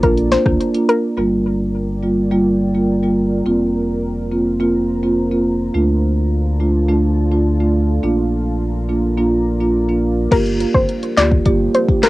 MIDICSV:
0, 0, Header, 1, 6, 480
1, 0, Start_track
1, 0, Key_signature, -2, "minor"
1, 0, Tempo, 571429
1, 987, Time_signature, 4, 2, 24, 8
1, 10159, End_track
2, 0, Start_track
2, 0, Title_t, "Synth pluck"
2, 0, Program_c, 0, 84
2, 26, Note_on_c, 0, 70, 83
2, 111, Note_off_c, 0, 70, 0
2, 266, Note_on_c, 0, 72, 89
2, 351, Note_off_c, 0, 72, 0
2, 747, Note_on_c, 0, 70, 92
2, 831, Note_off_c, 0, 70, 0
2, 8668, Note_on_c, 0, 70, 99
2, 8752, Note_off_c, 0, 70, 0
2, 9027, Note_on_c, 0, 72, 73
2, 9111, Note_off_c, 0, 72, 0
2, 9386, Note_on_c, 0, 74, 92
2, 9471, Note_off_c, 0, 74, 0
2, 9868, Note_on_c, 0, 72, 72
2, 9952, Note_off_c, 0, 72, 0
2, 10108, Note_on_c, 0, 70, 86
2, 10159, Note_off_c, 0, 70, 0
2, 10159, End_track
3, 0, Start_track
3, 0, Title_t, "Ambient pad"
3, 0, Program_c, 1, 92
3, 0, Note_on_c, 1, 65, 87
3, 0, Note_on_c, 1, 70, 81
3, 0, Note_on_c, 1, 74, 78
3, 0, Note_on_c, 1, 82, 98
3, 953, Note_off_c, 1, 65, 0
3, 954, Note_off_c, 1, 74, 0
3, 967, Note_off_c, 1, 70, 0
3, 967, Note_off_c, 1, 82, 0
3, 984, Note_on_c, 1, 74, 75
3, 985, Note_on_c, 1, 65, 82
3, 985, Note_on_c, 1, 70, 76
3, 986, Note_on_c, 1, 79, 86
3, 2886, Note_off_c, 1, 74, 0
3, 2887, Note_off_c, 1, 65, 0
3, 2887, Note_off_c, 1, 79, 0
3, 2907, Note_on_c, 1, 65, 80
3, 2907, Note_on_c, 1, 72, 77
3, 2908, Note_on_c, 1, 82, 88
3, 4792, Note_off_c, 1, 70, 0
3, 4808, Note_off_c, 1, 72, 0
3, 4808, Note_off_c, 1, 82, 0
3, 4827, Note_on_c, 1, 69, 76
3, 4828, Note_on_c, 1, 74, 77
3, 4828, Note_on_c, 1, 81, 92
3, 6728, Note_off_c, 1, 69, 0
3, 6728, Note_off_c, 1, 74, 0
3, 6728, Note_off_c, 1, 81, 0
3, 6745, Note_on_c, 1, 70, 77
3, 6745, Note_on_c, 1, 74, 76
3, 6745, Note_on_c, 1, 82, 93
3, 8633, Note_off_c, 1, 65, 0
3, 8647, Note_off_c, 1, 70, 0
3, 8647, Note_off_c, 1, 74, 0
3, 8647, Note_off_c, 1, 82, 0
3, 8666, Note_on_c, 1, 58, 83
3, 8667, Note_on_c, 1, 53, 85
3, 8667, Note_on_c, 1, 62, 77
3, 8667, Note_on_c, 1, 67, 93
3, 8668, Note_on_c, 1, 55, 78
3, 10159, Note_off_c, 1, 53, 0
3, 10159, Note_off_c, 1, 55, 0
3, 10159, Note_off_c, 1, 58, 0
3, 10159, Note_off_c, 1, 62, 0
3, 10159, Note_off_c, 1, 67, 0
3, 10159, End_track
4, 0, Start_track
4, 0, Title_t, "Marimba"
4, 0, Program_c, 2, 12
4, 24, Note_on_c, 2, 58, 93
4, 27, Note_on_c, 2, 62, 88
4, 29, Note_on_c, 2, 65, 110
4, 194, Note_off_c, 2, 58, 0
4, 196, Note_off_c, 2, 62, 0
4, 197, Note_off_c, 2, 65, 0
4, 383, Note_on_c, 2, 58, 83
4, 386, Note_on_c, 2, 62, 74
4, 389, Note_on_c, 2, 65, 90
4, 554, Note_off_c, 2, 58, 0
4, 555, Note_off_c, 2, 62, 0
4, 557, Note_off_c, 2, 65, 0
4, 623, Note_on_c, 2, 58, 80
4, 625, Note_on_c, 2, 62, 72
4, 628, Note_on_c, 2, 65, 87
4, 794, Note_off_c, 2, 58, 0
4, 795, Note_off_c, 2, 62, 0
4, 796, Note_off_c, 2, 65, 0
4, 983, Note_on_c, 2, 55, 86
4, 985, Note_on_c, 2, 58, 81
4, 987, Note_on_c, 2, 65, 94
4, 1647, Note_off_c, 2, 55, 0
4, 1648, Note_off_c, 2, 58, 0
4, 1650, Note_off_c, 2, 65, 0
4, 1703, Note_on_c, 2, 55, 67
4, 1705, Note_on_c, 2, 58, 65
4, 1708, Note_on_c, 2, 65, 75
4, 1926, Note_off_c, 2, 55, 0
4, 1927, Note_off_c, 2, 58, 0
4, 1928, Note_off_c, 2, 65, 0
4, 1944, Note_on_c, 2, 55, 92
4, 1946, Note_on_c, 2, 58, 81
4, 1949, Note_on_c, 2, 65, 97
4, 2114, Note_off_c, 2, 55, 0
4, 2115, Note_off_c, 2, 58, 0
4, 2117, Note_off_c, 2, 65, 0
4, 2304, Note_on_c, 2, 55, 74
4, 2307, Note_on_c, 2, 58, 67
4, 2309, Note_on_c, 2, 65, 77
4, 2474, Note_off_c, 2, 55, 0
4, 2476, Note_off_c, 2, 58, 0
4, 2477, Note_off_c, 2, 65, 0
4, 2544, Note_on_c, 2, 55, 68
4, 2546, Note_on_c, 2, 58, 69
4, 2549, Note_on_c, 2, 65, 79
4, 2714, Note_off_c, 2, 55, 0
4, 2715, Note_off_c, 2, 58, 0
4, 2717, Note_off_c, 2, 65, 0
4, 2904, Note_on_c, 2, 58, 91
4, 2907, Note_on_c, 2, 60, 83
4, 2909, Note_on_c, 2, 65, 99
4, 3568, Note_off_c, 2, 58, 0
4, 3569, Note_off_c, 2, 60, 0
4, 3570, Note_off_c, 2, 65, 0
4, 3624, Note_on_c, 2, 58, 70
4, 3627, Note_on_c, 2, 60, 65
4, 3629, Note_on_c, 2, 65, 75
4, 3846, Note_off_c, 2, 58, 0
4, 3848, Note_off_c, 2, 60, 0
4, 3849, Note_off_c, 2, 65, 0
4, 3864, Note_on_c, 2, 58, 88
4, 3866, Note_on_c, 2, 60, 82
4, 3869, Note_on_c, 2, 65, 100
4, 4034, Note_off_c, 2, 58, 0
4, 4035, Note_off_c, 2, 60, 0
4, 4037, Note_off_c, 2, 65, 0
4, 4224, Note_on_c, 2, 58, 71
4, 4226, Note_on_c, 2, 60, 69
4, 4229, Note_on_c, 2, 65, 85
4, 4394, Note_off_c, 2, 58, 0
4, 4395, Note_off_c, 2, 60, 0
4, 4397, Note_off_c, 2, 65, 0
4, 4465, Note_on_c, 2, 58, 74
4, 4466, Note_on_c, 2, 60, 66
4, 4469, Note_on_c, 2, 65, 79
4, 4635, Note_off_c, 2, 58, 0
4, 4635, Note_off_c, 2, 60, 0
4, 4637, Note_off_c, 2, 65, 0
4, 4824, Note_on_c, 2, 57, 91
4, 4827, Note_on_c, 2, 62, 82
4, 4829, Note_on_c, 2, 65, 103
4, 5488, Note_off_c, 2, 57, 0
4, 5489, Note_off_c, 2, 62, 0
4, 5490, Note_off_c, 2, 65, 0
4, 5543, Note_on_c, 2, 57, 69
4, 5546, Note_on_c, 2, 62, 62
4, 5549, Note_on_c, 2, 65, 77
4, 5766, Note_off_c, 2, 57, 0
4, 5767, Note_off_c, 2, 62, 0
4, 5769, Note_off_c, 2, 65, 0
4, 5784, Note_on_c, 2, 57, 92
4, 5786, Note_on_c, 2, 62, 79
4, 5789, Note_on_c, 2, 65, 99
4, 5954, Note_off_c, 2, 57, 0
4, 5955, Note_off_c, 2, 62, 0
4, 5957, Note_off_c, 2, 65, 0
4, 6145, Note_on_c, 2, 57, 72
4, 6146, Note_on_c, 2, 62, 72
4, 6149, Note_on_c, 2, 65, 83
4, 6315, Note_off_c, 2, 57, 0
4, 6315, Note_off_c, 2, 62, 0
4, 6317, Note_off_c, 2, 65, 0
4, 6384, Note_on_c, 2, 57, 74
4, 6387, Note_on_c, 2, 62, 66
4, 6390, Note_on_c, 2, 65, 81
4, 6554, Note_off_c, 2, 57, 0
4, 6556, Note_off_c, 2, 62, 0
4, 6557, Note_off_c, 2, 65, 0
4, 6745, Note_on_c, 2, 58, 91
4, 6748, Note_on_c, 2, 62, 84
4, 6751, Note_on_c, 2, 65, 105
4, 7409, Note_off_c, 2, 58, 0
4, 7410, Note_off_c, 2, 62, 0
4, 7411, Note_off_c, 2, 65, 0
4, 7464, Note_on_c, 2, 58, 69
4, 7467, Note_on_c, 2, 62, 63
4, 7469, Note_on_c, 2, 65, 79
4, 7686, Note_off_c, 2, 58, 0
4, 7688, Note_off_c, 2, 62, 0
4, 7689, Note_off_c, 2, 65, 0
4, 7704, Note_on_c, 2, 58, 92
4, 7707, Note_on_c, 2, 62, 81
4, 7709, Note_on_c, 2, 65, 97
4, 7874, Note_off_c, 2, 58, 0
4, 7876, Note_off_c, 2, 62, 0
4, 7877, Note_off_c, 2, 65, 0
4, 8065, Note_on_c, 2, 58, 76
4, 8067, Note_on_c, 2, 62, 70
4, 8070, Note_on_c, 2, 65, 82
4, 8235, Note_off_c, 2, 58, 0
4, 8236, Note_off_c, 2, 62, 0
4, 8237, Note_off_c, 2, 65, 0
4, 8304, Note_on_c, 2, 58, 74
4, 8307, Note_on_c, 2, 62, 70
4, 8309, Note_on_c, 2, 65, 83
4, 8474, Note_off_c, 2, 58, 0
4, 8476, Note_off_c, 2, 62, 0
4, 8477, Note_off_c, 2, 65, 0
4, 8665, Note_on_c, 2, 58, 98
4, 8667, Note_on_c, 2, 65, 93
4, 8670, Note_on_c, 2, 67, 113
4, 9328, Note_off_c, 2, 58, 0
4, 9330, Note_off_c, 2, 65, 0
4, 9331, Note_off_c, 2, 67, 0
4, 9384, Note_on_c, 2, 58, 78
4, 9386, Note_on_c, 2, 65, 73
4, 9389, Note_on_c, 2, 67, 81
4, 9606, Note_off_c, 2, 58, 0
4, 9607, Note_off_c, 2, 65, 0
4, 9609, Note_off_c, 2, 67, 0
4, 9624, Note_on_c, 2, 58, 95
4, 9626, Note_on_c, 2, 65, 89
4, 9629, Note_on_c, 2, 67, 107
4, 9794, Note_off_c, 2, 58, 0
4, 9795, Note_off_c, 2, 65, 0
4, 9797, Note_off_c, 2, 67, 0
4, 9985, Note_on_c, 2, 58, 82
4, 9987, Note_on_c, 2, 65, 76
4, 9990, Note_on_c, 2, 67, 95
4, 10155, Note_off_c, 2, 58, 0
4, 10156, Note_off_c, 2, 65, 0
4, 10157, Note_off_c, 2, 67, 0
4, 10159, End_track
5, 0, Start_track
5, 0, Title_t, "Sub bass"
5, 0, Program_c, 3, 38
5, 27, Note_on_c, 3, 34, 121
5, 310, Note_off_c, 3, 34, 0
5, 385, Note_on_c, 3, 38, 94
5, 480, Note_off_c, 3, 38, 0
5, 987, Note_on_c, 3, 31, 85
5, 2873, Note_off_c, 3, 31, 0
5, 2906, Note_on_c, 3, 29, 86
5, 4793, Note_off_c, 3, 29, 0
5, 4826, Note_on_c, 3, 38, 82
5, 6713, Note_off_c, 3, 38, 0
5, 6746, Note_on_c, 3, 34, 84
5, 8633, Note_off_c, 3, 34, 0
5, 8667, Note_on_c, 3, 31, 102
5, 8950, Note_off_c, 3, 31, 0
5, 9027, Note_on_c, 3, 31, 94
5, 9121, Note_off_c, 3, 31, 0
5, 9386, Note_on_c, 3, 38, 97
5, 9575, Note_off_c, 3, 38, 0
5, 9627, Note_on_c, 3, 31, 110
5, 9815, Note_off_c, 3, 31, 0
5, 10159, End_track
6, 0, Start_track
6, 0, Title_t, "Drums"
6, 25, Note_on_c, 9, 42, 74
6, 27, Note_on_c, 9, 36, 103
6, 109, Note_off_c, 9, 42, 0
6, 111, Note_off_c, 9, 36, 0
6, 147, Note_on_c, 9, 42, 53
6, 231, Note_off_c, 9, 42, 0
6, 266, Note_on_c, 9, 38, 70
6, 269, Note_on_c, 9, 42, 82
6, 350, Note_off_c, 9, 38, 0
6, 353, Note_off_c, 9, 42, 0
6, 385, Note_on_c, 9, 36, 99
6, 388, Note_on_c, 9, 37, 90
6, 469, Note_off_c, 9, 36, 0
6, 472, Note_off_c, 9, 37, 0
6, 510, Note_on_c, 9, 42, 75
6, 594, Note_off_c, 9, 42, 0
6, 626, Note_on_c, 9, 42, 58
6, 710, Note_off_c, 9, 42, 0
6, 748, Note_on_c, 9, 42, 78
6, 832, Note_off_c, 9, 42, 0
6, 8666, Note_on_c, 9, 36, 121
6, 8667, Note_on_c, 9, 42, 88
6, 8667, Note_on_c, 9, 49, 112
6, 8750, Note_off_c, 9, 36, 0
6, 8751, Note_off_c, 9, 42, 0
6, 8751, Note_off_c, 9, 49, 0
6, 8788, Note_on_c, 9, 42, 62
6, 8872, Note_off_c, 9, 42, 0
6, 8909, Note_on_c, 9, 42, 85
6, 8993, Note_off_c, 9, 42, 0
6, 9027, Note_on_c, 9, 36, 94
6, 9111, Note_off_c, 9, 36, 0
6, 9147, Note_on_c, 9, 42, 65
6, 9231, Note_off_c, 9, 42, 0
6, 9265, Note_on_c, 9, 42, 47
6, 9349, Note_off_c, 9, 42, 0
6, 9387, Note_on_c, 9, 42, 73
6, 9389, Note_on_c, 9, 38, 116
6, 9390, Note_on_c, 9, 39, 93
6, 9471, Note_off_c, 9, 42, 0
6, 9473, Note_off_c, 9, 38, 0
6, 9474, Note_off_c, 9, 39, 0
6, 9506, Note_on_c, 9, 36, 100
6, 9590, Note_off_c, 9, 36, 0
6, 9624, Note_on_c, 9, 42, 74
6, 9627, Note_on_c, 9, 36, 105
6, 9708, Note_off_c, 9, 42, 0
6, 9711, Note_off_c, 9, 36, 0
6, 9868, Note_on_c, 9, 42, 80
6, 9952, Note_off_c, 9, 42, 0
6, 9985, Note_on_c, 9, 36, 100
6, 10069, Note_off_c, 9, 36, 0
6, 10106, Note_on_c, 9, 38, 114
6, 10107, Note_on_c, 9, 39, 95
6, 10108, Note_on_c, 9, 42, 75
6, 10159, Note_off_c, 9, 38, 0
6, 10159, Note_off_c, 9, 39, 0
6, 10159, Note_off_c, 9, 42, 0
6, 10159, End_track
0, 0, End_of_file